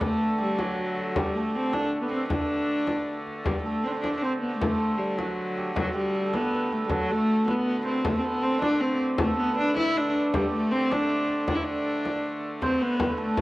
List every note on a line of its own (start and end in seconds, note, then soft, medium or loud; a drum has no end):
0.00 3.47 D3 medium
0.00 3.47 A3 medium
0.00 0.38 A3 medium
0.00 0.38 G4 medium
0.00 1.37 A4 medium
0.00 2.02 B4 medium
0.00 1.72 D5 medium
0.00 frame drum medium
0.38 0.61 G3 medium
0.38 0.64 G4 medium
0.38 frame drum soft
0.58 1.19 F#3 medium
0.58 1.23 F#4 medium
0.58 frame drum medium
0.78 frame drum soft
0.97 frame drum soft
1.16 1.36 G3 medium
1.16 3.46 G4 medium
1.16 frame drum medium
1.35 1.57 A3 medium
1.35 3.65 A4 medium
1.55 1.74 C4 medium
1.55 frame drum soft
1.72 2.01 D4 medium
1.72 2.31 D5 medium
1.72 frame drum medium
1.92 frame drum soft
2.02 2.11 B3 medium
2.02 3.92 B4 medium
2.11 2.29 C4 medium
2.11 frame drum soft
2.30 3.22 D4 medium
2.30 4.05 D5 medium
2.30 frame drum medium
2.87 frame drum medium
3.27 frame drum soft
3.44 8.05 D3 medium
3.44 3.63 G3 medium
3.44 8.05 A3 medium
3.44 5.26 G4 medium
3.44 frame drum medium
3.64 3.85 A3 medium
3.64 4.62 A4 medium
3.83 3.89 C4 medium
3.83 3.94 C5 medium
3.83 frame drum soft
3.87 3.99 C4 medium
3.87 3.93 D4 medium
3.94 4.24 C5 medium
3.99 4.15 D4 medium
4.04 6.51 D5 medium
4.04 frame drum medium
4.16 4.23 D4 medium
4.22 4.40 C4 medium
4.22 6.39 C5 medium
4.41 4.57 B3 medium
4.41 frame drum soft
4.58 4.99 A3 medium
4.58 frame drum medium
4.63 6.14 A4 medium
4.97 5.19 G3 medium
4.97 frame drum soft
5.18 5.75 F#3 medium
5.18 5.64 F#4 medium
5.18 frame drum medium
5.38 frame drum soft
5.57 5.81 G4 medium
5.57 frame drum soft
5.75 5.94 F#3 medium
5.75 6.00 F#4 medium
5.75 frame drum medium
5.94 6.36 G3 medium
5.94 6.96 G4 medium
6.14 6.72 A4 medium
6.14 frame drum soft
6.33 6.74 B3 medium
6.33 6.54 B4 medium
6.33 frame drum medium
6.52 7.47 B4 medium
6.52 frame drum soft
6.71 6.85 A3 medium
6.71 7.09 A4 medium
6.71 frame drum soft
6.86 6.92 G3 medium
6.86 frame drum medium
6.90 7.13 F#3 medium
6.90 10.15 F#4 medium
7.09 7.48 A3 medium
7.09 8.04 A4 medium
7.47 7.84 B3 medium
7.47 7.90 B4 medium
7.47 frame drum medium
7.84 8.07 C4 medium
7.84 8.31 C5 medium
8.04 12.61 D3 medium
8.04 12.60 A3 medium
8.04 8.20 A3 medium
8.04 9.19 A4 medium
8.04 frame drum medium
8.18 8.26 C4 medium
8.25 8.44 B3 medium
8.25 8.49 B4 medium
8.42 8.61 C4 medium
8.42 8.82 C5 medium
8.42 frame drum soft
8.62 8.82 D4 medium
8.62 9.95 D5 medium
8.62 frame drum medium
8.80 9.00 C4 medium
8.80 9.45 C5 medium
8.80 frame drum soft
9.00 frame drum soft
9.18 9.37 A3 medium
9.18 12.12 A4 medium
9.18 frame drum medium
9.38 9.56 B3 medium
9.38 9.52 B4 medium
9.52 9.64 B4 medium
9.58 9.75 D4 loud
9.58 frame drum soft
9.64 10.77 B4 medium
9.77 9.98 E4 medium
9.77 12.07 E5 medium
9.77 frame drum medium
9.96 10.15 D4 medium
9.96 10.90 D5 medium
9.96 frame drum soft
10.15 frame drum soft
10.33 10.51 G3 medium
10.33 13.41 G4 medium
10.33 frame drum medium
10.53 10.73 A3 medium
10.71 10.94 C4 loud
10.71 12.62 C5 medium
10.71 frame drum soft
10.90 11.48 D4 medium
10.90 11.47 D5 medium
10.90 frame drum medium
11.10 frame drum soft
11.29 frame drum soft
11.48 11.57 D4 medium
11.48 11.61 D5 medium
11.48 frame drum medium
11.55 11.66 E4 medium
11.61 12.44 D4 medium
11.61 13.41 D5 medium
12.05 frame drum medium
12.60 13.41 D3 medium
12.60 13.41 A3 medium
12.60 12.84 C4 medium
12.60 12.87 C5 medium
12.60 frame drum medium
12.81 13.19 B3 medium
12.81 12.94 B4 medium
12.81 frame drum soft
12.94 13.06 B4 medium
13.00 frame drum medium
13.06 13.41 B4 medium
13.18 13.41 A3 medium
13.18 13.41 A4 medium
13.37 frame drum medium